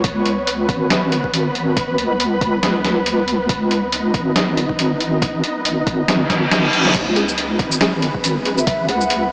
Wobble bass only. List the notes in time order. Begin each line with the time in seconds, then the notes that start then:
0.04 C#2
0.69 G#1
1.98 C#2
3.28 C#2
3.49 C#2
4.14 G#1
5.65 G#1
6.94 C#2
7.59 G#1
8.89 C#2